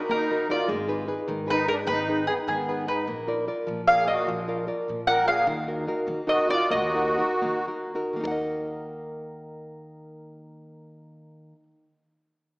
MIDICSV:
0, 0, Header, 1, 5, 480
1, 0, Start_track
1, 0, Key_signature, -6, "minor"
1, 0, Tempo, 397878
1, 835, Time_signature, 6, 3, 24, 8
1, 7081, Tempo, 423729
1, 8041, Tempo, 484262
1, 9001, Tempo, 550459
1, 9481, Tempo, 568182
1, 13164, End_track
2, 0, Start_track
2, 0, Title_t, "Mandolin"
2, 0, Program_c, 0, 25
2, 130, Note_on_c, 0, 70, 64
2, 572, Note_off_c, 0, 70, 0
2, 618, Note_on_c, 0, 74, 60
2, 828, Note_off_c, 0, 74, 0
2, 1814, Note_on_c, 0, 71, 90
2, 2025, Note_off_c, 0, 71, 0
2, 2031, Note_on_c, 0, 70, 80
2, 2095, Note_off_c, 0, 70, 0
2, 2259, Note_on_c, 0, 71, 93
2, 2713, Note_off_c, 0, 71, 0
2, 2740, Note_on_c, 0, 68, 68
2, 2807, Note_off_c, 0, 68, 0
2, 2995, Note_on_c, 0, 68, 60
2, 3448, Note_off_c, 0, 68, 0
2, 3478, Note_on_c, 0, 71, 60
2, 3703, Note_off_c, 0, 71, 0
2, 4675, Note_on_c, 0, 77, 94
2, 4904, Note_off_c, 0, 77, 0
2, 4918, Note_on_c, 0, 75, 64
2, 5144, Note_off_c, 0, 75, 0
2, 6119, Note_on_c, 0, 78, 84
2, 6341, Note_off_c, 0, 78, 0
2, 6367, Note_on_c, 0, 77, 82
2, 6583, Note_off_c, 0, 77, 0
2, 7558, Note_on_c, 0, 75, 76
2, 7779, Note_off_c, 0, 75, 0
2, 7799, Note_on_c, 0, 74, 86
2, 8025, Note_off_c, 0, 74, 0
2, 8037, Note_on_c, 0, 75, 76
2, 8965, Note_off_c, 0, 75, 0
2, 13164, End_track
3, 0, Start_track
3, 0, Title_t, "Nylon-string guitar"
3, 0, Program_c, 1, 24
3, 0, Note_on_c, 1, 63, 43
3, 0, Note_on_c, 1, 66, 39
3, 0, Note_on_c, 1, 70, 46
3, 112, Note_on_c, 1, 58, 61
3, 273, Note_off_c, 1, 63, 0
3, 274, Note_off_c, 1, 66, 0
3, 278, Note_off_c, 1, 70, 0
3, 376, Note_on_c, 1, 63, 48
3, 377, Note_on_c, 1, 66, 42
3, 383, Note_on_c, 1, 70, 50
3, 582, Note_off_c, 1, 58, 0
3, 582, Note_off_c, 1, 63, 0
3, 588, Note_off_c, 1, 70, 0
3, 589, Note_off_c, 1, 66, 0
3, 596, Note_on_c, 1, 63, 44
3, 603, Note_on_c, 1, 66, 39
3, 604, Note_on_c, 1, 70, 49
3, 786, Note_off_c, 1, 63, 0
3, 789, Note_off_c, 1, 70, 0
3, 790, Note_off_c, 1, 66, 0
3, 823, Note_on_c, 1, 56, 73
3, 1063, Note_on_c, 1, 63, 49
3, 1068, Note_on_c, 1, 68, 46
3, 1074, Note_on_c, 1, 71, 54
3, 1286, Note_off_c, 1, 63, 0
3, 1287, Note_off_c, 1, 68, 0
3, 1292, Note_off_c, 1, 56, 0
3, 1292, Note_off_c, 1, 71, 0
3, 1297, Note_on_c, 1, 63, 36
3, 1306, Note_on_c, 1, 68, 40
3, 1307, Note_on_c, 1, 71, 43
3, 1542, Note_on_c, 1, 51, 64
3, 1690, Note_off_c, 1, 63, 0
3, 1690, Note_off_c, 1, 68, 0
3, 1694, Note_off_c, 1, 71, 0
3, 1764, Note_on_c, 1, 63, 47
3, 1772, Note_on_c, 1, 68, 36
3, 1783, Note_on_c, 1, 71, 52
3, 2011, Note_off_c, 1, 68, 0
3, 2012, Note_off_c, 1, 51, 0
3, 2014, Note_off_c, 1, 63, 0
3, 2015, Note_off_c, 1, 71, 0
3, 2026, Note_on_c, 1, 63, 40
3, 2027, Note_on_c, 1, 68, 43
3, 2036, Note_on_c, 1, 71, 44
3, 2252, Note_on_c, 1, 51, 63
3, 2413, Note_off_c, 1, 68, 0
3, 2415, Note_off_c, 1, 63, 0
3, 2416, Note_off_c, 1, 71, 0
3, 2513, Note_on_c, 1, 63, 50
3, 2520, Note_on_c, 1, 68, 42
3, 2522, Note_on_c, 1, 71, 52
3, 2729, Note_off_c, 1, 51, 0
3, 2736, Note_off_c, 1, 63, 0
3, 2744, Note_off_c, 1, 68, 0
3, 2747, Note_off_c, 1, 71, 0
3, 2750, Note_on_c, 1, 63, 41
3, 2756, Note_on_c, 1, 68, 33
3, 2764, Note_on_c, 1, 71, 42
3, 2983, Note_on_c, 1, 51, 58
3, 3141, Note_off_c, 1, 63, 0
3, 3146, Note_off_c, 1, 68, 0
3, 3148, Note_off_c, 1, 71, 0
3, 3235, Note_on_c, 1, 63, 41
3, 3242, Note_on_c, 1, 68, 38
3, 3244, Note_on_c, 1, 71, 53
3, 3454, Note_off_c, 1, 63, 0
3, 3461, Note_off_c, 1, 51, 0
3, 3462, Note_off_c, 1, 71, 0
3, 3464, Note_off_c, 1, 68, 0
3, 3469, Note_on_c, 1, 63, 40
3, 3478, Note_on_c, 1, 68, 35
3, 3479, Note_on_c, 1, 71, 43
3, 3666, Note_off_c, 1, 63, 0
3, 3671, Note_off_c, 1, 71, 0
3, 3672, Note_off_c, 1, 68, 0
3, 3715, Note_on_c, 1, 58, 62
3, 3949, Note_on_c, 1, 65, 39
3, 3957, Note_on_c, 1, 70, 40
3, 3962, Note_on_c, 1, 74, 51
3, 4179, Note_off_c, 1, 65, 0
3, 4183, Note_off_c, 1, 70, 0
3, 4186, Note_off_c, 1, 74, 0
3, 4190, Note_off_c, 1, 58, 0
3, 4192, Note_on_c, 1, 65, 47
3, 4200, Note_on_c, 1, 70, 39
3, 4200, Note_on_c, 1, 74, 51
3, 4424, Note_on_c, 1, 53, 67
3, 4586, Note_off_c, 1, 65, 0
3, 4589, Note_off_c, 1, 70, 0
3, 4590, Note_off_c, 1, 74, 0
3, 4675, Note_on_c, 1, 70, 42
3, 4676, Note_on_c, 1, 65, 42
3, 4682, Note_on_c, 1, 74, 48
3, 4902, Note_off_c, 1, 65, 0
3, 4903, Note_off_c, 1, 70, 0
3, 4904, Note_off_c, 1, 53, 0
3, 4913, Note_off_c, 1, 74, 0
3, 4916, Note_on_c, 1, 65, 41
3, 4921, Note_on_c, 1, 70, 34
3, 4927, Note_on_c, 1, 74, 42
3, 5151, Note_on_c, 1, 53, 62
3, 5308, Note_off_c, 1, 65, 0
3, 5308, Note_off_c, 1, 70, 0
3, 5314, Note_off_c, 1, 74, 0
3, 5402, Note_on_c, 1, 65, 47
3, 5410, Note_on_c, 1, 70, 45
3, 5413, Note_on_c, 1, 74, 50
3, 5618, Note_off_c, 1, 65, 0
3, 5626, Note_off_c, 1, 53, 0
3, 5629, Note_off_c, 1, 70, 0
3, 5633, Note_on_c, 1, 65, 44
3, 5634, Note_off_c, 1, 74, 0
3, 5644, Note_on_c, 1, 70, 44
3, 5649, Note_on_c, 1, 74, 41
3, 5890, Note_on_c, 1, 53, 56
3, 6021, Note_off_c, 1, 65, 0
3, 6028, Note_off_c, 1, 70, 0
3, 6031, Note_off_c, 1, 74, 0
3, 6117, Note_on_c, 1, 65, 38
3, 6124, Note_on_c, 1, 70, 47
3, 6124, Note_on_c, 1, 74, 49
3, 6350, Note_off_c, 1, 53, 0
3, 6358, Note_off_c, 1, 65, 0
3, 6364, Note_off_c, 1, 70, 0
3, 6369, Note_off_c, 1, 74, 0
3, 6372, Note_on_c, 1, 65, 43
3, 6378, Note_on_c, 1, 70, 35
3, 6383, Note_on_c, 1, 74, 55
3, 6556, Note_off_c, 1, 65, 0
3, 6560, Note_off_c, 1, 70, 0
3, 6563, Note_off_c, 1, 74, 0
3, 6599, Note_on_c, 1, 51, 65
3, 6843, Note_on_c, 1, 63, 47
3, 6852, Note_on_c, 1, 66, 37
3, 6855, Note_on_c, 1, 70, 53
3, 7069, Note_off_c, 1, 51, 0
3, 7072, Note_off_c, 1, 63, 0
3, 7074, Note_off_c, 1, 66, 0
3, 7083, Note_off_c, 1, 70, 0
3, 7085, Note_on_c, 1, 63, 43
3, 7092, Note_on_c, 1, 66, 40
3, 7097, Note_on_c, 1, 70, 50
3, 7306, Note_on_c, 1, 58, 64
3, 7462, Note_off_c, 1, 63, 0
3, 7463, Note_off_c, 1, 66, 0
3, 7468, Note_off_c, 1, 70, 0
3, 7536, Note_on_c, 1, 63, 49
3, 7540, Note_on_c, 1, 66, 43
3, 7548, Note_on_c, 1, 70, 52
3, 7767, Note_off_c, 1, 66, 0
3, 7770, Note_off_c, 1, 63, 0
3, 7776, Note_off_c, 1, 70, 0
3, 7777, Note_off_c, 1, 58, 0
3, 7782, Note_on_c, 1, 66, 35
3, 7783, Note_on_c, 1, 63, 35
3, 7790, Note_on_c, 1, 70, 39
3, 8027, Note_on_c, 1, 58, 72
3, 8174, Note_off_c, 1, 66, 0
3, 8176, Note_off_c, 1, 63, 0
3, 8179, Note_off_c, 1, 70, 0
3, 8268, Note_on_c, 1, 63, 41
3, 8276, Note_on_c, 1, 66, 42
3, 8279, Note_on_c, 1, 70, 42
3, 8483, Note_off_c, 1, 58, 0
3, 8487, Note_off_c, 1, 63, 0
3, 8487, Note_off_c, 1, 66, 0
3, 8494, Note_off_c, 1, 70, 0
3, 8498, Note_on_c, 1, 63, 44
3, 8501, Note_on_c, 1, 66, 37
3, 8506, Note_on_c, 1, 70, 47
3, 8736, Note_on_c, 1, 58, 58
3, 8903, Note_off_c, 1, 63, 0
3, 8903, Note_off_c, 1, 66, 0
3, 8907, Note_off_c, 1, 70, 0
3, 8990, Note_on_c, 1, 63, 38
3, 8996, Note_on_c, 1, 70, 50
3, 8997, Note_on_c, 1, 66, 32
3, 9219, Note_off_c, 1, 58, 0
3, 9219, Note_off_c, 1, 63, 0
3, 9224, Note_off_c, 1, 66, 0
3, 9226, Note_off_c, 1, 70, 0
3, 9230, Note_on_c, 1, 63, 36
3, 9234, Note_on_c, 1, 66, 37
3, 9237, Note_on_c, 1, 70, 43
3, 9391, Note_on_c, 1, 51, 58
3, 9417, Note_on_c, 1, 58, 52
3, 9427, Note_off_c, 1, 63, 0
3, 9430, Note_off_c, 1, 66, 0
3, 9431, Note_off_c, 1, 70, 0
3, 9453, Note_on_c, 1, 63, 55
3, 9481, Note_on_c, 1, 70, 49
3, 9510, Note_off_c, 1, 70, 0
3, 9514, Note_on_c, 1, 78, 50
3, 9548, Note_on_c, 1, 75, 54
3, 12259, Note_off_c, 1, 51, 0
3, 12284, Note_off_c, 1, 58, 0
3, 12319, Note_off_c, 1, 63, 0
3, 12379, Note_off_c, 1, 78, 0
3, 12413, Note_off_c, 1, 75, 0
3, 13164, End_track
4, 0, Start_track
4, 0, Title_t, "Accordion"
4, 0, Program_c, 2, 21
4, 137, Note_on_c, 2, 63, 62
4, 575, Note_off_c, 2, 63, 0
4, 620, Note_on_c, 2, 65, 59
4, 829, Note_off_c, 2, 65, 0
4, 1830, Note_on_c, 2, 63, 82
4, 2033, Note_off_c, 2, 63, 0
4, 2069, Note_on_c, 2, 62, 69
4, 2167, Note_off_c, 2, 62, 0
4, 2299, Note_on_c, 2, 63, 72
4, 2734, Note_off_c, 2, 63, 0
4, 2771, Note_on_c, 2, 59, 64
4, 2875, Note_off_c, 2, 59, 0
4, 3016, Note_on_c, 2, 59, 62
4, 3459, Note_off_c, 2, 59, 0
4, 3473, Note_on_c, 2, 63, 51
4, 3700, Note_off_c, 2, 63, 0
4, 4701, Note_on_c, 2, 68, 68
4, 4918, Note_off_c, 2, 68, 0
4, 4965, Note_on_c, 2, 66, 62
4, 5170, Note_off_c, 2, 66, 0
4, 6153, Note_on_c, 2, 70, 82
4, 6359, Note_off_c, 2, 70, 0
4, 6396, Note_on_c, 2, 68, 65
4, 6599, Note_off_c, 2, 68, 0
4, 7573, Note_on_c, 2, 66, 75
4, 7787, Note_off_c, 2, 66, 0
4, 7836, Note_on_c, 2, 65, 67
4, 8045, Note_off_c, 2, 65, 0
4, 8053, Note_on_c, 2, 66, 74
4, 8972, Note_off_c, 2, 66, 0
4, 13164, End_track
5, 0, Start_track
5, 0, Title_t, "Upright bass"
5, 0, Program_c, 3, 32
5, 123, Note_on_c, 3, 51, 68
5, 835, Note_on_c, 3, 32, 88
5, 853, Note_off_c, 3, 51, 0
5, 1299, Note_off_c, 3, 32, 0
5, 1549, Note_on_c, 3, 44, 81
5, 2251, Note_on_c, 3, 32, 99
5, 2269, Note_off_c, 3, 44, 0
5, 2727, Note_off_c, 3, 32, 0
5, 2986, Note_on_c, 3, 44, 78
5, 3708, Note_on_c, 3, 34, 77
5, 3726, Note_off_c, 3, 44, 0
5, 4183, Note_off_c, 3, 34, 0
5, 4440, Note_on_c, 3, 46, 79
5, 5167, Note_on_c, 3, 34, 84
5, 5185, Note_off_c, 3, 46, 0
5, 5633, Note_off_c, 3, 34, 0
5, 5902, Note_on_c, 3, 46, 77
5, 6597, Note_on_c, 3, 39, 88
5, 6615, Note_off_c, 3, 46, 0
5, 7072, Note_off_c, 3, 39, 0
5, 7315, Note_on_c, 3, 51, 82
5, 8053, Note_on_c, 3, 39, 99
5, 8067, Note_off_c, 3, 51, 0
5, 8506, Note_off_c, 3, 39, 0
5, 8748, Note_on_c, 3, 51, 79
5, 9235, Note_off_c, 3, 51, 0
5, 9480, Note_on_c, 3, 39, 74
5, 12345, Note_off_c, 3, 39, 0
5, 13164, End_track
0, 0, End_of_file